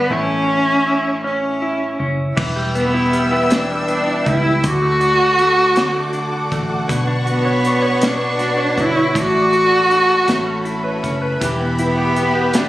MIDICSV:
0, 0, Header, 1, 7, 480
1, 0, Start_track
1, 0, Tempo, 754717
1, 63, Time_signature, 6, 3, 24, 8
1, 8069, End_track
2, 0, Start_track
2, 0, Title_t, "String section"
2, 0, Program_c, 0, 48
2, 1506, Note_on_c, 0, 71, 68
2, 1506, Note_on_c, 0, 76, 53
2, 1507, Note_on_c, 0, 88, 77
2, 1509, Note_on_c, 0, 79, 58
2, 2935, Note_off_c, 0, 71, 0
2, 2935, Note_off_c, 0, 76, 0
2, 2935, Note_off_c, 0, 88, 0
2, 2936, Note_off_c, 0, 79, 0
2, 2953, Note_on_c, 0, 86, 75
2, 2954, Note_on_c, 0, 78, 70
2, 2956, Note_on_c, 0, 62, 62
2, 2957, Note_on_c, 0, 69, 71
2, 4371, Note_off_c, 0, 86, 0
2, 4373, Note_off_c, 0, 69, 0
2, 4383, Note_on_c, 0, 85, 81
2, 4384, Note_on_c, 0, 71, 78
2, 5797, Note_off_c, 0, 62, 0
2, 5805, Note_off_c, 0, 71, 0
2, 5805, Note_off_c, 0, 85, 0
2, 5816, Note_on_c, 0, 74, 59
2, 5816, Note_on_c, 0, 86, 74
2, 5820, Note_on_c, 0, 69, 68
2, 6515, Note_off_c, 0, 78, 0
2, 6529, Note_off_c, 0, 74, 0
2, 6530, Note_off_c, 0, 86, 0
2, 6542, Note_on_c, 0, 73, 64
2, 6544, Note_on_c, 0, 83, 67
2, 6547, Note_on_c, 0, 76, 57
2, 7244, Note_off_c, 0, 69, 0
2, 7253, Note_off_c, 0, 73, 0
2, 7263, Note_on_c, 0, 71, 60
2, 7270, Note_on_c, 0, 67, 70
2, 8069, Note_off_c, 0, 67, 0
2, 8069, Note_off_c, 0, 71, 0
2, 8069, Note_off_c, 0, 76, 0
2, 8069, Note_off_c, 0, 83, 0
2, 8069, End_track
3, 0, Start_track
3, 0, Title_t, "Steel-string acoustic guitar"
3, 0, Program_c, 1, 25
3, 7261, Note_on_c, 1, 52, 70
3, 7264, Note_on_c, 1, 67, 56
3, 7499, Note_on_c, 1, 64, 54
3, 7733, Note_off_c, 1, 67, 0
3, 7741, Note_on_c, 1, 67, 55
3, 7982, Note_on_c, 1, 59, 67
3, 8069, Note_off_c, 1, 52, 0
3, 8069, Note_off_c, 1, 59, 0
3, 8069, Note_off_c, 1, 64, 0
3, 8069, Note_off_c, 1, 67, 0
3, 8069, End_track
4, 0, Start_track
4, 0, Title_t, "Cello"
4, 0, Program_c, 2, 42
4, 0, Note_on_c, 2, 59, 88
4, 77, Note_on_c, 2, 61, 99
4, 87, Note_off_c, 2, 59, 0
4, 793, Note_off_c, 2, 61, 0
4, 803, Note_on_c, 2, 61, 64
4, 1312, Note_off_c, 2, 61, 0
4, 1777, Note_on_c, 2, 59, 80
4, 2250, Note_on_c, 2, 62, 82
4, 2259, Note_off_c, 2, 59, 0
4, 2723, Note_on_c, 2, 64, 93
4, 2733, Note_off_c, 2, 62, 0
4, 2962, Note_on_c, 2, 66, 117
4, 2971, Note_off_c, 2, 64, 0
4, 4151, Note_off_c, 2, 66, 0
4, 4634, Note_on_c, 2, 59, 84
4, 5113, Note_on_c, 2, 62, 89
4, 5123, Note_off_c, 2, 59, 0
4, 5597, Note_on_c, 2, 64, 100
4, 5606, Note_off_c, 2, 62, 0
4, 5837, Note_on_c, 2, 66, 117
4, 5847, Note_off_c, 2, 64, 0
4, 7028, Note_off_c, 2, 66, 0
4, 7511, Note_on_c, 2, 59, 84
4, 7998, Note_on_c, 2, 62, 79
4, 8008, Note_off_c, 2, 59, 0
4, 8069, Note_off_c, 2, 62, 0
4, 8069, End_track
5, 0, Start_track
5, 0, Title_t, "Clean electric guitar"
5, 0, Program_c, 3, 27
5, 0, Note_on_c, 3, 59, 41
5, 0, Note_on_c, 3, 62, 51
5, 65, Note_off_c, 3, 62, 0
5, 65, Note_on_c, 3, 45, 64
5, 69, Note_on_c, 3, 64, 57
5, 113, Note_off_c, 3, 59, 0
5, 305, Note_on_c, 3, 61, 47
5, 548, Note_off_c, 3, 64, 0
5, 551, Note_on_c, 3, 64, 44
5, 783, Note_off_c, 3, 61, 0
5, 790, Note_on_c, 3, 61, 53
5, 1028, Note_off_c, 3, 64, 0
5, 1030, Note_on_c, 3, 64, 48
5, 1262, Note_off_c, 3, 61, 0
5, 1270, Note_on_c, 3, 61, 39
5, 1505, Note_on_c, 3, 52, 72
5, 1511, Note_off_c, 3, 45, 0
5, 1559, Note_off_c, 3, 61, 0
5, 1630, Note_on_c, 3, 55, 52
5, 1750, Note_on_c, 3, 59, 52
5, 1866, Note_off_c, 3, 64, 0
5, 1868, Note_on_c, 3, 64, 50
5, 1980, Note_off_c, 3, 55, 0
5, 1987, Note_on_c, 3, 55, 51
5, 2099, Note_off_c, 3, 64, 0
5, 2107, Note_on_c, 3, 64, 57
5, 2221, Note_off_c, 3, 52, 0
5, 2229, Note_on_c, 3, 52, 72
5, 2341, Note_off_c, 3, 55, 0
5, 2349, Note_on_c, 3, 55, 51
5, 2457, Note_off_c, 3, 59, 0
5, 2465, Note_on_c, 3, 59, 54
5, 2579, Note_off_c, 3, 64, 0
5, 2586, Note_on_c, 3, 64, 56
5, 2695, Note_off_c, 3, 55, 0
5, 2703, Note_on_c, 3, 55, 45
5, 2819, Note_off_c, 3, 64, 0
5, 2827, Note_on_c, 3, 64, 50
5, 2944, Note_off_c, 3, 52, 0
5, 2946, Note_on_c, 3, 50, 79
5, 2994, Note_off_c, 3, 55, 0
5, 2995, Note_off_c, 3, 59, 0
5, 2997, Note_off_c, 3, 64, 0
5, 3063, Note_on_c, 3, 57, 56
5, 3182, Note_on_c, 3, 62, 51
5, 3305, Note_on_c, 3, 66, 60
5, 3419, Note_off_c, 3, 57, 0
5, 3427, Note_on_c, 3, 57, 58
5, 3546, Note_off_c, 3, 66, 0
5, 3549, Note_on_c, 3, 66, 57
5, 3658, Note_off_c, 3, 50, 0
5, 3661, Note_on_c, 3, 50, 81
5, 3778, Note_off_c, 3, 57, 0
5, 3786, Note_on_c, 3, 57, 56
5, 3898, Note_off_c, 3, 62, 0
5, 3901, Note_on_c, 3, 62, 61
5, 4021, Note_off_c, 3, 66, 0
5, 4023, Note_on_c, 3, 66, 60
5, 4137, Note_off_c, 3, 57, 0
5, 4144, Note_on_c, 3, 57, 58
5, 4256, Note_off_c, 3, 66, 0
5, 4258, Note_on_c, 3, 66, 54
5, 4377, Note_on_c, 3, 47, 76
5, 4431, Note_off_c, 3, 57, 0
5, 4496, Note_off_c, 3, 62, 0
5, 4498, Note_on_c, 3, 62, 64
5, 4612, Note_off_c, 3, 66, 0
5, 4615, Note_on_c, 3, 66, 61
5, 4739, Note_on_c, 3, 73, 64
5, 4758, Note_off_c, 3, 50, 0
5, 4852, Note_off_c, 3, 62, 0
5, 4854, Note_on_c, 3, 62, 58
5, 4968, Note_off_c, 3, 73, 0
5, 4976, Note_on_c, 3, 73, 66
5, 5085, Note_off_c, 3, 47, 0
5, 5093, Note_on_c, 3, 47, 76
5, 5213, Note_off_c, 3, 62, 0
5, 5216, Note_on_c, 3, 62, 55
5, 5324, Note_off_c, 3, 66, 0
5, 5331, Note_on_c, 3, 66, 48
5, 5446, Note_off_c, 3, 73, 0
5, 5454, Note_on_c, 3, 73, 57
5, 5568, Note_off_c, 3, 62, 0
5, 5576, Note_on_c, 3, 62, 46
5, 5692, Note_off_c, 3, 73, 0
5, 5699, Note_on_c, 3, 73, 52
5, 5821, Note_on_c, 3, 57, 81
5, 5863, Note_off_c, 3, 47, 0
5, 5863, Note_off_c, 3, 66, 0
5, 5865, Note_off_c, 3, 62, 0
5, 5867, Note_off_c, 3, 73, 0
5, 5940, Note_on_c, 3, 62, 55
5, 6058, Note_on_c, 3, 66, 59
5, 6176, Note_on_c, 3, 69, 59
5, 6287, Note_off_c, 3, 62, 0
5, 6295, Note_on_c, 3, 62, 54
5, 6411, Note_off_c, 3, 69, 0
5, 6419, Note_on_c, 3, 69, 59
5, 6528, Note_off_c, 3, 57, 0
5, 6536, Note_on_c, 3, 57, 74
5, 6585, Note_off_c, 3, 62, 0
5, 6586, Note_off_c, 3, 66, 0
5, 6587, Note_off_c, 3, 69, 0
5, 6653, Note_on_c, 3, 61, 54
5, 6773, Note_on_c, 3, 64, 57
5, 6894, Note_on_c, 3, 71, 49
5, 7007, Note_off_c, 3, 61, 0
5, 7015, Note_on_c, 3, 61, 52
5, 7132, Note_off_c, 3, 71, 0
5, 7135, Note_on_c, 3, 71, 49
5, 7252, Note_off_c, 3, 57, 0
5, 7254, Note_on_c, 3, 52, 70
5, 7305, Note_off_c, 3, 61, 0
5, 7381, Note_on_c, 3, 59, 56
5, 7497, Note_off_c, 3, 64, 0
5, 7500, Note_on_c, 3, 64, 53
5, 7616, Note_off_c, 3, 71, 0
5, 7618, Note_on_c, 3, 67, 60
5, 7732, Note_off_c, 3, 59, 0
5, 7740, Note_on_c, 3, 59, 55
5, 7849, Note_off_c, 3, 67, 0
5, 7857, Note_on_c, 3, 67, 56
5, 7972, Note_off_c, 3, 52, 0
5, 7979, Note_on_c, 3, 52, 79
5, 8069, Note_off_c, 3, 52, 0
5, 8069, Note_off_c, 3, 59, 0
5, 8069, Note_off_c, 3, 64, 0
5, 8069, Note_off_c, 3, 67, 0
5, 8069, End_track
6, 0, Start_track
6, 0, Title_t, "Fingered electric bass"
6, 0, Program_c, 4, 33
6, 64, Note_on_c, 4, 33, 70
6, 1244, Note_off_c, 4, 33, 0
6, 1269, Note_on_c, 4, 30, 54
6, 1496, Note_off_c, 4, 30, 0
6, 1509, Note_on_c, 4, 28, 76
6, 2686, Note_off_c, 4, 28, 0
6, 2712, Note_on_c, 4, 37, 68
6, 2937, Note_off_c, 4, 37, 0
6, 2951, Note_on_c, 4, 38, 80
6, 4120, Note_off_c, 4, 38, 0
6, 4146, Note_on_c, 4, 33, 65
6, 4370, Note_off_c, 4, 33, 0
6, 4383, Note_on_c, 4, 35, 87
6, 5554, Note_off_c, 4, 35, 0
6, 5582, Note_on_c, 4, 31, 63
6, 5806, Note_off_c, 4, 31, 0
6, 5822, Note_on_c, 4, 33, 89
6, 6514, Note_off_c, 4, 33, 0
6, 6540, Note_on_c, 4, 33, 83
6, 6994, Note_off_c, 4, 33, 0
6, 7021, Note_on_c, 4, 30, 64
6, 7246, Note_off_c, 4, 30, 0
6, 7260, Note_on_c, 4, 28, 76
6, 8069, Note_off_c, 4, 28, 0
6, 8069, End_track
7, 0, Start_track
7, 0, Title_t, "Drums"
7, 1510, Note_on_c, 9, 36, 96
7, 1510, Note_on_c, 9, 49, 86
7, 1574, Note_off_c, 9, 36, 0
7, 1574, Note_off_c, 9, 49, 0
7, 1751, Note_on_c, 9, 42, 39
7, 1815, Note_off_c, 9, 42, 0
7, 1992, Note_on_c, 9, 42, 50
7, 2056, Note_off_c, 9, 42, 0
7, 2229, Note_on_c, 9, 42, 77
7, 2239, Note_on_c, 9, 38, 91
7, 2292, Note_off_c, 9, 42, 0
7, 2302, Note_off_c, 9, 38, 0
7, 2468, Note_on_c, 9, 42, 43
7, 2532, Note_off_c, 9, 42, 0
7, 2711, Note_on_c, 9, 42, 45
7, 2712, Note_on_c, 9, 36, 87
7, 2775, Note_off_c, 9, 36, 0
7, 2775, Note_off_c, 9, 42, 0
7, 2949, Note_on_c, 9, 42, 87
7, 2950, Note_on_c, 9, 36, 96
7, 3012, Note_off_c, 9, 42, 0
7, 3014, Note_off_c, 9, 36, 0
7, 3185, Note_on_c, 9, 42, 41
7, 3249, Note_off_c, 9, 42, 0
7, 3425, Note_on_c, 9, 42, 47
7, 3489, Note_off_c, 9, 42, 0
7, 3662, Note_on_c, 9, 42, 78
7, 3672, Note_on_c, 9, 38, 97
7, 3726, Note_off_c, 9, 42, 0
7, 3735, Note_off_c, 9, 38, 0
7, 3899, Note_on_c, 9, 42, 44
7, 3963, Note_off_c, 9, 42, 0
7, 4145, Note_on_c, 9, 36, 85
7, 4148, Note_on_c, 9, 42, 45
7, 4209, Note_off_c, 9, 36, 0
7, 4212, Note_off_c, 9, 42, 0
7, 4384, Note_on_c, 9, 36, 103
7, 4386, Note_on_c, 9, 42, 87
7, 4448, Note_off_c, 9, 36, 0
7, 4450, Note_off_c, 9, 42, 0
7, 4623, Note_on_c, 9, 42, 40
7, 4687, Note_off_c, 9, 42, 0
7, 4863, Note_on_c, 9, 42, 44
7, 4926, Note_off_c, 9, 42, 0
7, 5097, Note_on_c, 9, 42, 81
7, 5107, Note_on_c, 9, 38, 88
7, 5161, Note_off_c, 9, 42, 0
7, 5171, Note_off_c, 9, 38, 0
7, 5337, Note_on_c, 9, 42, 42
7, 5348, Note_on_c, 9, 38, 29
7, 5400, Note_off_c, 9, 42, 0
7, 5411, Note_off_c, 9, 38, 0
7, 5581, Note_on_c, 9, 36, 88
7, 5584, Note_on_c, 9, 42, 45
7, 5645, Note_off_c, 9, 36, 0
7, 5647, Note_off_c, 9, 42, 0
7, 5821, Note_on_c, 9, 36, 96
7, 5823, Note_on_c, 9, 42, 88
7, 5884, Note_off_c, 9, 36, 0
7, 5887, Note_off_c, 9, 42, 0
7, 6061, Note_on_c, 9, 42, 40
7, 6124, Note_off_c, 9, 42, 0
7, 6301, Note_on_c, 9, 42, 47
7, 6365, Note_off_c, 9, 42, 0
7, 6537, Note_on_c, 9, 42, 81
7, 6547, Note_on_c, 9, 38, 92
7, 6600, Note_off_c, 9, 42, 0
7, 6610, Note_off_c, 9, 38, 0
7, 6776, Note_on_c, 9, 42, 41
7, 6840, Note_off_c, 9, 42, 0
7, 7020, Note_on_c, 9, 36, 82
7, 7022, Note_on_c, 9, 42, 47
7, 7084, Note_off_c, 9, 36, 0
7, 7085, Note_off_c, 9, 42, 0
7, 7260, Note_on_c, 9, 36, 97
7, 7260, Note_on_c, 9, 42, 96
7, 7323, Note_off_c, 9, 36, 0
7, 7323, Note_off_c, 9, 42, 0
7, 7495, Note_on_c, 9, 42, 44
7, 7559, Note_off_c, 9, 42, 0
7, 7736, Note_on_c, 9, 42, 45
7, 7800, Note_off_c, 9, 42, 0
7, 7972, Note_on_c, 9, 42, 91
7, 7982, Note_on_c, 9, 38, 91
7, 8036, Note_off_c, 9, 42, 0
7, 8045, Note_off_c, 9, 38, 0
7, 8069, End_track
0, 0, End_of_file